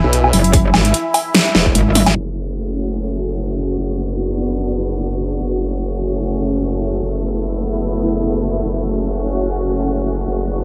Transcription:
Already playing: supersaw synth E4 E5 G#5 B5
0.04 wobble bass B1
0.13 closed hi-hat
0.24 low woodblock
0.33 wobble bass F#1, open hi-hat
0.44 closed hi-hat
0.53 kick, closed hi-hat
0.74 wobble bass G#1, snare, low woodblock
0.85 closed hi-hat
0.94 closed hi-hat
1.14 open hi-hat, low woodblock
1.35 snare, closed hi-hat
1.55 wobble bass E1, snare
1.66 kick
1.75 wobble bass G#1, closed hi-hat
1.95 open hi-hat, high tom
2.06 snare, closed hi-hat, low woodblock
2.16 wobble bass F#1, supersaw synth A3 C#4 F#4, crash, downlifter
3.78 wobble bass F#1, supersaw synth B3 D4
5.40 wobble bass F#1, supersaw synth A3 C#4
7.02 wobble bass F#1, supersaw synth B3 E4
8.64 wobble bass F#1, supersaw synth C#4 F#4
10.26 wobble bass F#1, supersaw synth B3 D4 F#4

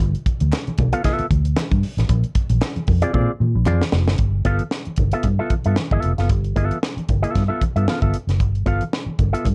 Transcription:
0.00 fingered electric bass G1, kick, muted conga
0.15 closed hi-hat
0.26 kick, closed hi-hat, muted conga
0.40 fingered electric bass D2, closed hi-hat, high conga
0.52 snare, clap, muted conga
0.67 muted fingered electric bass stroke, closed hi-hat, high conga
0.78 fingered electric bass B1, kick, closed hi-hat, muted conga, low conga
0.93 clean electric guitar B3 F4 A4 F5, closed hi-hat
1.04 clean electric guitar B3 F4 A4 E5, kick, snare, closed hi-hat, muted conga, high conga, low conga
1.19 muted fingered electric bass stroke, closed hi-hat
1.31 fingered electric bass D2, kick, closed hi-hat, muted conga, high conga
1.45 closed hi-hat
1.57 snare, clap, muted conga, high conga
1.71 fingered electric bass G2, kick, closed hi-hat, high conga
1.83 open hi-hat, muted conga
1.97 fingered electric bass A1, snare, closed hi-hat, low conga
2.08 fingered electric bass A#1, kick, closed hi-hat, muted conga
2.24 closed hi-hat
2.35 kick, closed hi-hat
2.50 fingered electric bass A#1, closed hi-hat, high conga
2.62 snare, clap
2.76 muted fingered electric bass stroke, closed hi-hat, high conga
2.87 fingered electric bass F2, kick, open hi-hat, muted conga, low conga
3.02 clean electric guitar C4 F4 G#4 D5, closed hi-hat
3.13 fingered electric bass A#2, clean electric guitar C4 F4 G#4 D5, kick, muted conga, high conga, low conga
3.40 fingered electric bass A#2, muted conga, high conga
3.55 fingered electric bass A#1
3.66 fingered electric bass F2, clean electric guitar C4 F4 G#4 D5, clap, muted conga, high conga
3.81 snare, high conga
3.92 fingered electric bass F1, snare
4.08 fingered electric bass F#1, snare, low conga
4.18 fingered electric bass G1, kick, closed hi-hat
4.45 fingered electric bass G1, clean electric guitar B3 F4 A4 F5, kick, closed hi-hat
4.59 closed hi-hat, high conga
4.71 snare
4.85 muted fingered electric bass stroke, closed hi-hat, high conga
4.96 fingered electric bass G1, kick, closed hi-hat, muted conga, low conga
5.12 clean electric guitar B3 F4 A4 E5, closed hi-hat
5.23 fingered electric bass G2, kick, closed hi-hat, low conga
5.39 clean electric guitar B3 F4 A4 E5
5.50 muted fingered electric bass stroke, kick, closed hi-hat, muted conga, high conga
5.64 fingered electric bass G2, clean electric guitar B3 F4 A4 E5, closed hi-hat
5.76 snare, muted conga, high conga
5.91 fingered electric bass G1, clean electric guitar B3 F4 A4 E5, kick, high conga
6.03 fingered electric bass F1, closed hi-hat, muted conga
6.18 fingered electric bass F#1, clean electric guitar B3 F4 A4 F5, snare, closed hi-hat, low conga
6.29 fingered electric bass G1, kick, closed hi-hat, muted conga
6.44 closed hi-hat
6.56 fingered electric bass G1, clean electric guitar B3 F4 A4 E5, kick, closed hi-hat, muted conga
6.71 closed hi-hat, high conga
6.83 snare, muted conga
6.96 muted fingered electric bass stroke, closed hi-hat, high conga
7.09 fingered electric bass G1, kick, closed hi-hat, low conga
7.22 clean electric guitar B3 F4 A4 E5, closed hi-hat
7.35 fingered electric bass G2, kick, snare, closed hi-hat, muted conga, low conga
7.48 clean electric guitar B3 F4 A4 E5
7.61 muted fingered electric bass stroke, kick, closed hi-hat, muted conga, high conga
7.76 fingered electric bass G2, clean electric guitar B3 F4 A4 E5, closed hi-hat
7.87 clean electric guitar B3 F4 A4 F5, muted fingered electric bass stroke, snare, high conga
8.02 fingered electric bass G1, clean electric guitar B3 F4 A4 E5, kick, closed hi-hat, high conga
8.14 closed hi-hat
8.27 fingered electric bass F#1, snare, closed hi-hat, low conga
8.40 fingered electric bass G1, kick, closed hi-hat
8.55 closed hi-hat
8.66 fingered electric bass G1, clean electric guitar B3 F4 A4 F5, kick, closed hi-hat, muted conga
8.81 closed hi-hat, high conga
8.93 snare, muted conga
9.06 muted fingered electric bass stroke, high conga
9.19 fingered electric bass G1, kick, closed hi-hat, muted conga, low conga
9.33 clean electric guitar B3 F4 A4 E5, closed hi-hat
9.45 fingered electric bass G2, kick, closed hi-hat, muted conga, low conga

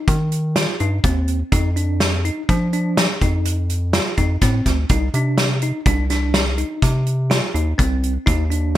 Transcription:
Already playing: tine electric piano D#4
0.08 analog synth bass D#3, kick, closed hi-hat
0.32 closed hi-hat
0.56 tine electric piano F4, snare, closed hi-hat
0.80 analog synth bass G2, tine electric piano D#4, closed hi-hat
1.04 analog synth bass D#2, tine electric piano C4, kick, closed hi-hat
1.28 closed hi-hat
1.52 analog synth bass F2, tine electric piano D#4, kick, closed hi-hat
1.76 tine electric piano D4, closed hi-hat
2.00 snare, closed hi-hat
2.25 tine electric piano D#4, closed hi-hat
2.49 analog synth bass F3, tine electric piano D4, kick, closed hi-hat
2.73 tine electric piano D4, closed hi-hat
2.97 snare, closed hi-hat
3.21 analog synth bass F2, tine electric piano D#4, kick, closed hi-hat
3.45 closed hi-hat
3.70 closed hi-hat
3.93 tine electric piano F4, snare, closed hi-hat
4.17 analog synth bass F2, tine electric piano D#4, kick, closed hi-hat
4.41 analog synth bass A2, tine electric piano C4, kick, snare, closed hi-hat
4.66 analog synth bass D2, kick, snare, closed hi-hat
4.89 analog synth bass C2, tine electric piano D#4, kick, closed hi-hat
5.14 analog synth bass C3, tine electric piano D4, closed hi-hat
5.38 snare, closed hi-hat
5.62 tine electric piano D#4, closed hi-hat
5.86 analog synth bass C2, tine electric piano D4, kick, closed hi-hat
6.10 tine electric piano D4, snare, closed hi-hat
6.34 snare, closed hi-hat
6.58 tine electric piano D#4, closed hi-hat
6.82 analog synth bass C3, kick, snare, closed hi-hat
7.07 closed hi-hat
7.30 tine electric piano F4, snare, closed hi-hat
7.54 analog synth bass D#2, tine electric piano D#4, closed hi-hat
7.78 analog synth bass C2, tine electric piano C4, kick, closed hi-hat
8.03 closed hi-hat
8.26 analog synth bass D#2, tine electric piano D#4, kick, closed hi-hat
8.51 tine electric piano D4, closed hi-hat

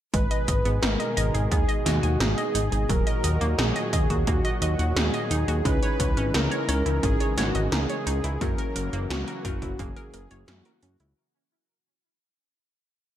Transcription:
0.14 analog synth bass G#1, analog synth pad B2 D#3 G#3 G#4 D#5, synth arpeggio sound G#3, supersaw synth B4, kick, closed hi-hat
0.31 synth arpeggio sound D#5, closed hi-hat
0.48 analog synth bass G#1, synth arpeggio sound D#5, kick, closed hi-hat
0.65 analog synth bass G#2, synth arpeggio sound B3, closed hi-hat
0.82 analog synth bass G#1, synth arpeggio sound D#4, supersaw synth A#4, snare, closed hi-hat
1.00 synth arpeggio sound D#5, closed hi-hat
1.17 analog synth bass G#1, synth arpeggio sound D#5, closed hi-hat
1.34 analog synth bass G#1, synth arpeggio sound G#4, closed hi-hat
1.51 analog synth bass D#2, synth arpeggio sound B3, supersaw synth G#4, kick, closed hi-hat
1.69 synth arpeggio sound D#5, closed hi-hat
1.86 analog synth bass D#2, supersaw synth F#4, synth arpeggio sound D#5, snare, closed hi-hat
2.03 analog synth bass D#2, synth arpeggio sound G#5, closed hi-hat
2.20 analog synth bass G#1, synth arpeggio sound D#4, supersaw synth G#4, snare, closed hi-hat
2.38 synth arpeggio sound D#5, closed hi-hat
2.55 analog synth bass G#1, synth arpeggio sound D#4, closed hi-hat
2.72 analog synth bass G#1, synth arpeggio sound G#4, closed hi-hat
2.89 analog synth bass D#1, analog synth pad A#2 D#3 F#3 F#4, synth arpeggio sound F#3, supersaw synth A#4, kick, closed hi-hat
3.07 synth arpeggio sound D#5, closed hi-hat
3.24 analog synth bass D#2, synth arpeggio sound D#5, closed hi-hat
3.41 analog synth bass D#2, synth arpeggio sound A#3, closed hi-hat
3.58 analog synth bass A#1, synth arpeggio sound D#4, supersaw synth G#4, snare, closed hi-hat
3.76 synth arpeggio sound D#5, closed hi-hat
3.93 analog synth bass D#2, synth arpeggio sound D#5, kick, closed hi-hat
4.10 analog synth bass D#2, synth arpeggio sound F#4, kick, closed hi-hat
4.27 analog synth bass D#2, synth arpeggio sound A#3, supersaw synth F#4, kick, closed hi-hat
4.45 synth arpeggio sound D#5, closed hi-hat
4.62 analog synth bass D#2, supersaw synth F#4, synth arpeggio sound D#5, closed hi-hat
4.79 analog synth bass D#2, synth arpeggio sound F#5, closed hi-hat
4.96 analog synth bass D#2, synth arpeggio sound D#4, supersaw synth G#4, snare, closed hi-hat
5.14 synth arpeggio sound D#5, closed hi-hat
5.31 analog synth bass D#2, synth arpeggio sound D#4, closed hi-hat
5.48 analog synth bass D#2, synth arpeggio sound F#4, closed hi-hat
5.65 analog synth bass C#2, analog synth pad C#3 E3 G#3, synth arpeggio sound G#3, tine electric piano C#4 D#4 E4 G#4, supersaw synth B4, kick, closed hi-hat
5.83 synth arpeggio sound C#5, closed hi-hat
6.00 analog synth bass C#2, synth arpeggio sound C#5, kick, closed hi-hat
6.17 analog synth bass G#1, synth arpeggio sound C#4, closed hi-hat
6.34 analog synth bass C#2, synth arpeggio sound D#4, supersaw synth A#4, snare, closed hi-hat
6.51 synth arpeggio sound C#5, closed hi-hat
6.69 analog synth bass C#2, tine electric piano C#4 D#4 E4 A#4, synth arpeggio sound C#5, closed hi-hat
6.86 analog synth bass C#2, synth arpeggio sound E4, closed hi-hat
7.03 analog synth bass G#1, synth arpeggio sound C#4, supersaw synth G#4, kick, closed hi-hat
7.20 synth arpeggio sound C#5, closed hi-hat
7.38 analog synth bass G#1, supersaw synth F#4, synth arpeggio sound C#5, snare, closed hi-hat
7.55 analog synth bass G#1, synth arpeggio sound D#5, closed hi-hat
7.72 analog synth bass C#2, synth arpeggio sound D#4, supersaw synth G#4, snare, closed hi-hat
7.90 synth arpeggio sound C#5, closed hi-hat
8.07 analog synth bass C#2, synth arpeggio sound D#4, closed hi-hat
8.24 analog synth bass C#2, synth arpeggio sound E4, closed hi-hat
8.41 analog synth bass F#2, analog synth pad E3 F#3 A#3, synth arpeggio sound F#3, tine electric piano A#3 C#4 E4 F#4, supersaw synth A#4, kick, closed hi-hat
8.58 synth arpeggio sound A#4, closed hi-hat
8.76 analog synth bass F#1, synth arpeggio sound A#4, closed hi-hat
8.93 analog synth bass F#1, synth arpeggio sound A#3, closed hi-hat
9.10 analog synth bass C#2, synth arpeggio sound C#4, supersaw synth F#4, snare, closed hi-hat
9.28 synth arpeggio sound A#4, closed hi-hat
9.45 analog synth bass F#1, tine electric piano A#3 C#4 E4 F#4, synth arpeggio sound A#4, kick, closed hi-hat
9.62 analog synth bass F#1, synth arpeggio sound E4, kick, closed hi-hat
9.79 analog synth bass F#1, synth arpeggio sound A#3, supersaw synth G#4, kick, closed hi-hat
9.96 synth arpeggio sound A#4, closed hi-hat
10.14 analog synth bass F#1, synth arpeggio sound A#4, closed hi-hat
10.31 analog synth bass F#1, synth arpeggio sound C#5, closed hi-hat
10.48 analog synth bass F#2, synth arpeggio sound C#4, supersaw synth F#4, snare, closed hi-hat
10.65 synth arpeggio sound A#4, closed hi-hat
10.83 analog synth bass F#2, synth arpeggio sound C#4, closed hi-hat
11.00 analog synth bass C#2, synth arpeggio sound E4, closed hi-hat

